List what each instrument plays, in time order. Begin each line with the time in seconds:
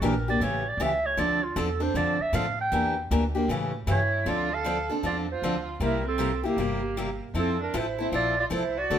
0.01 upright bass A#1, steel-string acoustic guitar E3 A#3 D4 G4
0.06 clarinet A#4
0.28 steel-string acoustic guitar A#3 D4 G4, clarinet D5
0.40 upright bass A1, steel-string acoustic guitar C#3 E3 A3 C#4 G4
0.44 clarinet C#5
0.69 clarinet D5
0.77 upright bass C#2, steel-string acoustic guitar C#3 E3 A3 C#4 G4
0.82 clarinet E5
1.06 clarinet C#5
1.17 upright bass D2, steel-string acoustic guitar D3 F3 C4 D4 A4, clarinet D5
1.44 clarinet F4
1.56 upright bass E2, steel-string acoustic guitar D3 F3 C4 D4 A4, clarinet A4
1.80 steel-string acoustic guitar C4 D4 A4, clarinet C5
1.94 upright bass F2, steel-string acoustic guitar D3 F3 C4 D4 A4, clarinet D5
2.19 clarinet E5, muted upright bass stroke
2.33 upright bass A2, steel-string acoustic guitar D3 F3 C4 D4 A4, clarinet F5
2.61 clarinet G5
2.72 upright bass E2, steel-string acoustic guitar E3 A#3 D4 G4
3.11 upright bass D2, steel-string acoustic guitar E3 A#3 D4 G4
3.35 steel-string acoustic guitar A#3 D4 G4
3.48 upright bass A2, steel-string acoustic guitar C#3 E3 A3 C#4 G4
3.87 upright bass G2, steel-string acoustic guitar C#3 E3 A3 C#4 G4, violin E4
3.92 clarinet C#5
4.26 upright bass D2, steel-string acoustic guitar D3 F3 C4 D4 A4, violin F4
4.30 clarinet D5
4.52 violin A4, clarinet F5
4.64 steel-string acoustic guitar D3 F3 C4 D4 A4
4.89 steel-string acoustic guitar C4 D4 A4
5.03 upright bass E2, steel-string acoustic guitar D3 F3 C4 D4 A4, violin F4, clarinet D5
5.31 violin F4, clarinet C5
5.42 upright bass D2, steel-string acoustic guitar D3 F3 C4 D4 A4
5.80 upright bass C2, steel-string acoustic guitar C3 G3 A#3 E4 G4, violin E4
5.85 clarinet A#4
6.06 violin C4, clarinet A4
6.18 steel-string acoustic guitar C3 G3 A#3 E4 G4
6.44 violin A#3, steel-string acoustic guitar A#3 E4 G4
6.48 clarinet G4
6.57 upright bass G1, steel-string acoustic guitar C3 G3 A#3 E4 G4
6.97 steel-string acoustic guitar C3 G3 A#3 E4 G4
7.34 upright bass F2, steel-string acoustic guitar F3 C4 E4 A4, violin C4
7.39 clarinet A4
7.61 violin D4, clarinet A#4
7.74 upright bass A1, steel-string acoustic guitar F3 C4 E4 A4, violin E4
7.78 clarinet C5
7.99 steel-string acoustic guitar C4 E4 A4, violin E4, clarinet C5
8.12 upright bass A#1, steel-string acoustic guitar F3 C4 E4 A4, violin F4, clarinet D5
8.39 violin F4, clarinet D5
8.50 upright bass C2, steel-string acoustic guitar F3 C4 E4 A4, violin E4, clarinet C5
8.77 violin F#4, clarinet D5
8.90 upright bass D2, steel-string acoustic guitar D3 A3 C4 F#4 A4